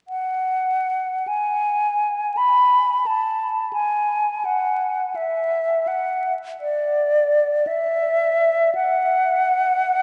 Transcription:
flute
0.08 F#5
1.28 G#5
2.37 B5
3.06 A5
3.73 G#5
4.45 F#5
5.16 E5
5.87 F#5
6.60 D5
7.67 E5
8.75 F#5

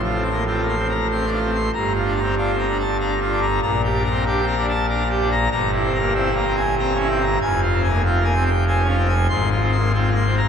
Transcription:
pipe organ
Already playing: A1 A2
0.04 F4
0.15 C4
0.24 C6
0.31 A#3
0.47 C4 F4
0.62 A#3
0.69 C6
0.79 C4
0.89 A#5
1.11 C4 C6
1.26 D4
1.32 F4
1.44 C4
1.55 C6
1.74 G1 G2 A#5
1.95 F4
2.06 D4
2.16 A#5
2.22 C4
2.38 D4 F4
2.54 C4
2.59 A#5
2.69 D4
2.80 A5
3.00 D4 A#5
3.21 F4
3.31 D4
3.42 A#5
3.62 A#1 A#2 A#5
3.84 G4
3.95 D4
4.05 A#5
4.11 C4
4.26 D4 G4
4.42 C4
4.47 A#5
4.58 D4
4.69 A5
4.89 D4 A#5
5.10 G4
5.21 D4
5.31 A#5
5.51 G1 G2 A#5
5.73 E4
5.84 C4
5.94 A#5
5.99 A#3
6.15 C4 E4
6.31 A#3
6.36 A#5
6.47 C4
6.57 G#5
6.79 C4 A#5
6.94 C#4
7.00 E4
7.10 C4
7.21 A#5
7.41 F1 F2 G#5
7.62 F4
7.73 C4
7.83 G#5
7.88 A#3
8.05 C4 F4
8.20 A#3
8.24 G#5
8.35 C4
8.46 G5
8.68 C4 G#5
8.82 C#4
8.87 F4
8.98 C4
9.08 G#5
9.29 G#1 G#2 C6
9.52 F4
9.62 C4
9.72 C6
9.78 A#3
9.94 C4 F4
10.10 A#3
10.15 C6
10.26 C4
10.37 A#5

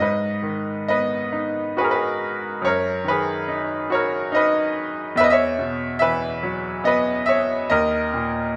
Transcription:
grand piano
0.00 G#2 B4 D#5
0.42 D#3
0.88 B3 B4 D#5
1.32 D#4
1.77 F#4 G#4 B4
1.84 A#4
1.91 G#4 B4
2.62 F#2 C#5
2.67 A#4
3.04 D#3 B4
3.10 G#4
3.48 D#4
3.90 F#4 C#5
3.94 A#4
4.32 D#4 D#5
4.36 B4
5.16 E2 E5
5.21 B4 D#5
5.30 C#5 E5
5.59 B2
5.99 E3 B4 E5
6.43 F#3
6.84 B3 B4 D#5
7.26 C#5 E5
7.70 D#2 A#4 D#5
8.14 A#2

